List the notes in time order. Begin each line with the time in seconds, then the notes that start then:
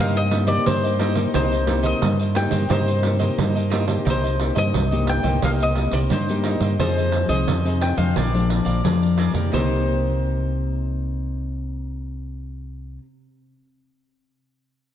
Already playing: D#4
0.00 G2 C3 A#3 D#4 G4 A#4 C5 D#5 F5
0.16 A#4 C5 D#5, pandeiro
0.31 A#3 D#4 G4, muted cavaquinho stroke, pandeiro
0.47 A#3 D#4 G4 A#4 C5 D5 D#5, pandeiro
0.66 G2 D#4 A#4 C5 D#5, pandeiro
0.83 A#4 C5 D#5, pandeiro
0.99 A#3 D#4 G4 A#4 C5 D#5, pandeiro
1.15 A#3 D#4 G4 A#4 C5 D#5, pandeiro
1.34 C2 C3 D#4 A#4 C5 D#5, pandeiro
1.52 A#4 C5 D#5, pandeiro
1.66 A#3 D#4 G4, muted cavaquinho stroke, pandeiro
1.83 A#4 C5 D#5, pandeiro
2.02 G2, pandeiro
2.20 A#4 C5 D#5, pandeiro
2.35 A#3 D#4 G4 G5, pandeiro
2.50 G2 A#4 C5 D#5, pandeiro
2.69 G2 C3 A#3 D#4 G4 A#4 C5 D#5, pandeiro
2.87 A#4 C5 D#5, pandeiro
3.03 A#3 D#4 G4, muted cavaquinho stroke, pandeiro
3.19 A#3 D#4 G4 A#4 C5 D#5, pandeiro
3.37 G2 D#4 A#4 C5 D#5, pandeiro
3.55 A#4 C5 D#5, pandeiro
3.70 A#3 D#4 G4 A#4 C5 D#5, pandeiro
3.86 A#3 D#4 G4 A#4 C5 D#5, pandeiro
4.05 C2 C3 D#4 A#4 C5 D#5, pandeiro
4.10 C5
4.23 A#4 C5 D#5, pandeiro
4.39 A#3 D#4 G4, muted cavaquinho stroke, pandeiro
4.55 G2 A#4 C5 D#5, pandeiro
4.74 C2 G2, pandeiro
4.91 A#3 D#4 G4 A#4 C5 D#5, pandeiro
5.07 G5, pandeiro
5.23 C2 A#3 D#4 G4 A#4 C5 D#5, pandeiro
5.42 C2 C3 A#3 D#4 G4 A#4 C5 D#5 F5, pandeiro
5.60 A#4 C5 D#5, pandeiro
5.75 A#3 D#4 G4, muted cavaquinho stroke, pandeiro
5.91 C2 A#4 C5 D5 D#5, pandeiro
6.10 G2 D#4 A#4 C5 D#5, pandeiro
6.28 A#3 D#4 G4 A#4 C5 D#5, pandeiro
6.44 D#4 A#4 C5 D#5, pandeiro
6.60 G2 A#4 C5 D#5, pandeiro
6.79 F2 F3 C4 D#4 F4 G#4 C5 D#5, pandeiro
6.97 G#4 C5 D#5, pandeiro
7.12 muted cavaquinho stroke, pandeiro
7.28 C2 C4 D#4 G#4 C5 D#5, pandeiro
7.47 F2 C3, pandeiro
7.65 C4 D#4 G#4 C5 D#5, pandeiro
7.81 G5, pandeiro
7.97 F2 F3 G#3 D4 G#4 C5 D#5 F5, pandeiro
8.16 A#1 A#2 G#4 A#4 D5 F5, pandeiro
8.33 F3 G#3 D4 A#4 D5 F5, pandeiro
8.49 muted cavaquinho stroke, pandeiro
8.65 A#1 A#4 D5 F5, pandeiro
8.84 F2 F3 G#3 D4 G#4 A#4 D5 F5, pandeiro
9.02 A#4 D5 F5, pandeiro
9.18 G#4 A#4 D5 F5, pandeiro
9.33 F2 A#3 D#4 G4 A#4 D5 F5, pandeiro
9.50 C2 C3 A#3 D#4 A#4 C5, pandeiro
9.54 G4 C5 D#5